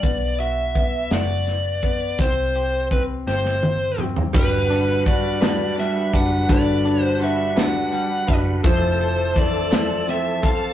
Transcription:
Already playing: D5
0.03 B1 B3, kick, closed hi-hat
0.39 F#4 E5, closed hi-hat
0.75 B3, kick, closed hi-hat
1.11 F#1 F#4 D5, snare, closed hi-hat
1.47 snare, closed hi-hat
1.83 B3, kick, closed hi-hat
2.18 C2 C4 C5, kick, closed hi-hat
2.55 G4, closed hi-hat
2.91 C4 B4, kick, closed hi-hat
3.27 G1 G4 C5, snare
3.45 snare
3.63 high tom
3.98 C4, mid tom
4.16 floor tom
4.33 G1 G3 D4 F#4 B4 F#5 B5, kick, crash
4.70 D4, closed hi-hat
5.05 G3 D4 F#4 B4 D5, kick, closed hi-hat
5.41 G3 D4 F#4 B4, snare, closed hi-hat
5.78 G3 E5, snare, closed hi-hat
6.12 F#1 D4 F#4 B4 F#5, kick, closed hi-hat
6.49 G1 D3 G3 D4 F#4 B4 D5, kick, closed hi-hat
6.85 D4, closed hi-hat
7.01 C5
7.20 G3 D4 F#4 B4 E5, closed hi-hat
7.56 G3 D4 F#4 B4 F#5, snare, closed hi-hat
7.92 G3, closed hi-hat
8.27 F#1 D4 F#4 B4, kick, closed hi-hat
8.63 F1 F3 A3 C4 E4 A4 C5 A5 E6, kick, closed hi-hat
8.99 A4, closed hi-hat
9.35 E3 A3 C4 E4 C5, kick, closed hi-hat
9.39 D5
9.71 F3 A3 C4 E4 A4 C5, snare, closed hi-hat
10.07 C4 E5, snare, closed hi-hat
10.42 G1 C4 A4 C5 F5, kick, closed hi-hat

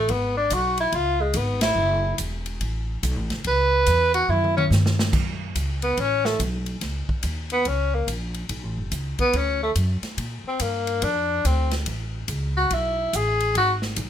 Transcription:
Already playing: A3
0.09 G#1 B3, kick, ride
0.37 D4
0.50 B1 F#4, kick, hi-hat pedal, ride
0.78 E4, ride
0.92 C#2 F4, kick, ride
1.21 G#3
1.34 G#1 B3, kick, hi-hat pedal, ride
1.61 E4, snare, ride
1.75 F#1
2.18 E1, kick, hi-hat pedal, ride
2.46 ride
2.61 A1, kick, ride
3.03 B1, kick, hi-hat pedal, ride
3.16 A1
3.30 F#1, snare, ride
3.44 C#2 B4, kick, ride
3.86 E2, kick, hi-hat pedal, ride
4.14 F#4, ride
4.29 F#2 E4, mid tom
4.44 mid tom
4.57 C#4, mid tom
4.70 G2, snare, hi-hat pedal
4.86 snare
4.99 snare
5.13 F#2, kick, crash
5.55 C#2, kick, hi-hat pedal, ride
5.82 B3, ride
5.97 A1 C#4, kick, ride
6.25 A3, snare
6.39 B1, kick, hi-hat pedal, ride
6.66 ride
6.81 C#2, kick, snare, ride
7.08 muted upright bass stroke, kick
7.23 D#2, kick, hi-hat pedal, ride
7.50 B3, ride
7.65 C#2 C#4, kick, ride
7.94 A#3
8.07 A#1, kick, hi-hat pedal, ride
8.34 ride
8.49 B1, kick, ride
8.63 A1
8.77 F#1
8.92 C#2, kick, hi-hat pedal, ride
9.19 B3, muted upright bass stroke, kick, ride
9.33 D2 C#4, kick, ride
9.63 A3
9.75 F#2, kick, hi-hat pedal, ride
10.02 muted upright bass stroke, snare, ride
10.17 A#2, kick, ride
10.44 C4, muted upright bass stroke
10.60 G2 A#3, kick, hi-hat pedal, ride
10.87 ride
11.02 F2 D4, kick, ride
11.45 D2 C4, kick, hi-hat pedal, ride
11.71 snare, ride
11.86 A1, kick, ride
12.28 C#2, kick, hi-hat pedal, ride
12.57 F#4
12.71 B1 E4, kick, ride
13.13 A1 G#4, kick, hi-hat pedal, ride
13.40 ride
13.55 G#1 F#4, kick, ride
13.82 snare
13.96 B1, kick, hi-hat pedal, ride

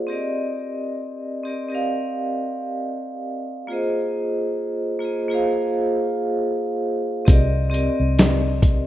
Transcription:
Already playing: A#3 F4 G#4 C5 D5
0.07 C4 G4 A#4
0.11 D5 D#5
1.43 C4 G4 A#4
1.48 D5 D#5
1.69 C4 G4 A#4
1.73 D5 F5
3.67 A#3 F4 G#4
3.72 C5 D#5
4.99 A#3 F4 G#4
5.04 C5 D#5
5.28 A#3 F4 G#4
5.33 C5 F5
7.25 C2 C4 G4 A#4, kick, closed hi-hat
7.29 D5 D#5
7.70 C4 G4 A#4
7.74 D5 D#5, closed hi-hat
8.00 C2
8.19 snare, closed hi-hat
8.62 kick, closed hi-hat

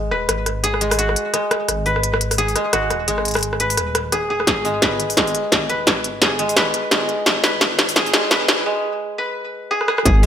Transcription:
Already playing: G#1 G#3 F#4 G#4
0.11 D#1 B4, cross-stick
0.29 G#1, cross-stick, closed hi-hat
0.46 cross-stick, closed hi-hat
0.64 G#4, closed hi-hat
0.74 cross-stick
0.81 G#3, closed hi-hat
0.91 cross-stick, open hi-hat
0.99 F#4, closed hi-hat
1.09 cross-stick
1.16 closed hi-hat
1.33 G#3, cross-stick, closed hi-hat
1.51 cross-stick, closed hi-hat
1.68 G#1, cross-stick, closed hi-hat
1.86 B4, open hi-hat
1.96 cross-stick
2.03 closed hi-hat
2.14 cross-stick
2.21 closed hi-hat
2.31 cross-stick, open hi-hat
2.38 G#4, closed hi-hat
2.48 open hi-hat
2.56 G#3, cross-stick, closed hi-hat
2.73 G#1 F#4, cross-stick, closed hi-hat
2.90 D#1, cross-stick, closed hi-hat
3.08 G#1 G#3, closed hi-hat
3.18 cross-stick
3.25 closed hi-hat
3.28 closed hi-hat
3.31 closed hi-hat
3.34 cross-stick, closed hi-hat
3.36 closed hi-hat
3.39 closed hi-hat
3.41 closed hi-hat
3.43 closed hi-hat
3.53 cross-stick
3.60 B4, closed hi-hat
3.70 open hi-hat
3.77 D#1, cross-stick, closed hi-hat
3.95 cross-stick, closed hi-hat
4.12 G#4, cross-stick, closed hi-hat
4.30 G#4
4.40 cross-stick
4.47 G#1 G#4, kick, snare, closed hi-hat
4.65 G#3, open hi-hat
4.82 B4, kick, snare, closed hi-hat
5.00 closed hi-hat
5.10 open hi-hat
5.17 G#3, kick, snare, closed hi-hat
5.27 open hi-hat
5.35 closed hi-hat
5.52 G#1, kick, snare, closed hi-hat
5.69 D#1 B4, closed hi-hat
5.87 G#1, kick, snare, closed hi-hat
6.04 closed hi-hat
6.22 G#4, kick, snare, closed hi-hat
6.39 G#3, closed hi-hat
6.49 open hi-hat
6.56 B4, kick, snare, closed hi-hat
6.74 closed hi-hat
6.91 G#3, kick, snare, closed hi-hat
7.09 closed hi-hat
7.26 G#1, kick, snare, closed hi-hat
7.44 B4, snare, open hi-hat
7.61 kick, snare, closed hi-hat
7.79 snare, closed hi-hat
7.89 open hi-hat
7.96 G#4, kick, snare, closed hi-hat
8.06 open hi-hat
8.14 G#3, snare, closed hi-hat
8.31 G#1 B4, kick, snare, closed hi-hat
8.48 D#1, snare, closed hi-hat
8.66 G#3
9.18 B4
9.71 G#4
9.81 cross-stick
9.88 G#4, cross-stick
9.98 cross-stick
10.05 G#1 G#3 G#4, kick, closed hi-hat

